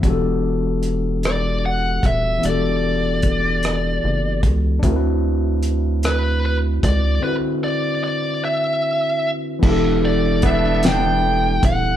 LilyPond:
<<
  \new Staff \with { instrumentName = "Lead electric guitar" } { \time 6/8 \key e \minor \tempo 4. = 50 r4. d''8 fis''8 e''8 | d''2~ d''8 r8 | r4. b'8 b'8 d''8 | b'8 d''8 d''8 e''4 r8 |
r8 d''8 e''8 g''4 fis''8 | }
  \new Staff \with { instrumentName = "Tine electric piano" } { \time 6/8 \key e \minor <e b d' fis' g' a'>2. | <e b d' fis' g' a'>2. | <c' d' e' fis' ais' b'>2. | <d c' e' fis' b'>2. |
<e b d' e' g' a'>2. | }
  \new Staff \with { instrumentName = "Horn section" } { \time 6/8 \key e \minor r2. | r2. | r2. | r2. |
r4 <a b d'>4. r8 | }
  \new Staff \with { instrumentName = "Analog synth bass" } { \clef bass \time 6/8 \key e \minor e,,2~ e,,8 dis,,8 | e,,2 fis,,8 cis,8 | d,2~ d,8 cis,8 | r2. |
e,,2~ e,,8 dis,,8 | }
  \new DrumStaff \with { instrumentName = "Drums" } \drummode { \time 6/8 <hh bd>4 hh8 <hh ss>4 <hh bd>8 | hh4 <hh bd>8 <hh ss>4 <hh bd>8 | <hh bd>4 hh8 <hh ss>4 <hh bd>8 | r4. r4. |
<cymc bd>4 <hh bd>8 <hh sn>4 <hh bd>8 | }
>>